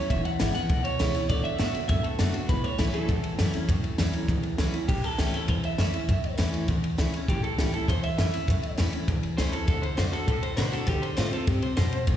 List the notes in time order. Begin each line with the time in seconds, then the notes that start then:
Already playing: C#4
0.10 E1 E2 B2 E5, kick, ride
0.25 F#5, muted upright bass stroke, ride
0.39 G#1 E2 C#3 E3 G#3 B3 E4, snare, ride
0.54 B3 E4 F#5, ride
0.69 B1 E2 B2, kick, ride
0.84 C#5, muted upright bass stroke, ride
0.99 C#2 E2 C#3 E3 G#3 B3 E4, snare, ride
1.14 B3 E4, muted upright bass stroke, ride
1.29 D2 D3 A3 D5, kick, ride
1.44 E5, ride
1.58 A2 D3 A3 B3 D4 F#4, snare, ride
1.74 D4 F#4, muted upright bass stroke, ride
1.88 F#2 A2 D3 A3 E5, kick, ride
2.03 A4, muted upright bass stroke, ride
2.19 F#2 D3 A3 B3 D4 F#4, snare, ride
2.34 D4 F#4, muted upright bass stroke, ride
2.49 A1 A2 E3 B4, kick, ride
2.64 C#5, muted upright bass stroke, ride
2.78 C#2 A2 E3 F#3 A3 C#4 E4 B4, snare, ride
2.94 A4, muted upright bass stroke, ride
3.09 E2 A2 E3, kick, ride
3.24 muted upright bass stroke, ride
3.39 F#2 A2 E3 F#3 A3 C#4 E4, snare, ride
3.54 C#4 E4, muted upright bass stroke, ride
3.68 F#2 A2 E3, kick, ride
3.84 muted upright bass stroke, ride
3.98 E2 A2 E3 F#3 A3 C#4 E4, snare, ride
4.13 C#4 E4, muted upright bass stroke, ride
4.28 D2 E2 A2 E3, kick, ride
4.43 ride
4.58 C#2 A2 E3 F#3 A3 C#4 E4, snare, ride
4.74 C#4 E4, ride
4.88 A1 A2 G4, kick, crash
5.04 A4, muted upright bass stroke, ride
5.18 C#2 E3 A3 C#4 E4 G4, snare, ride
5.34 C#4 E4 A4, muted upright bass stroke, ride
5.48 E2 C5, kick, ride
5.64 E5, muted upright bass stroke, ride
5.78 F#2 E3 A3 C#4 E4 E5, snare, ride
5.93 C#4 E4, muted upright bass stroke, ride
6.09 F#2 A2, kick, ride
6.23 muted upright bass stroke, ride
6.38 E2 E3 A3 C#4 E4, snare, ride
6.53 muted upright bass stroke, ride
6.68 D2 E2, kick, ride
6.84 muted upright bass stroke, ride
6.98 C#2 E3 A3 C#4 E4, snare, ride
7.14 C#4 E4, ride
7.28 A1 A2 G4, kick, ride
7.43 A4, muted upright bass stroke, ride
7.58 C#2 E3 A3 C#4 E4 G4, snare, ride
7.74 C#4 E4 A4, ride
7.88 E2 C5, kick, ride
8.03 E5, muted upright bass stroke, ride
8.18 F#2 E3 A3 C#4 E4 E5, snare, ride
8.34 C#4 E4, muted upright bass stroke, ride
8.48 F#2 A2, kick, ride
8.63 muted upright bass stroke, ride
8.77 E2 E3 A3 C#4 E4, snare, ride
8.93 C#4 E4, muted upright bass stroke, ride
9.08 D2 E2, kick, ride
9.23 muted upright bass stroke, ride
9.37 C#2 E3 A3 C#4 E4 C5, snare, ride
9.52 C#4 E4 A4, muted upright bass stroke, ride
9.67 D2 D3 A4, kick, ride
9.82 C5, muted upright bass stroke, ride
9.97 F#2 D3 A3 D4 F#4 C5, snare, ride
10.12 D4 F#4 A4, muted upright bass stroke, ride
10.27 A2 A4, kick, ride
10.43 C5, muted upright bass stroke, ride
10.57 B2 D3 A3 D4 F#4 C5, snare, ride
10.72 D4 F#4 A4, muted upright bass stroke, ride
10.87 D2 D3 G4, kick, ride
11.02 C5, ride
11.17 A2 D3 A3 C4 F4 C5, snare, ride
11.31 C4 F4 A4, muted upright bass stroke, ride
11.47 G2 C3 G4, kick, ride
11.62 C5, muted upright bass stroke, ride
11.77 F2 B2 C5, snare, ride
11.92 muted upright bass stroke, ride
12.07 A1 A2 E3, kick, ride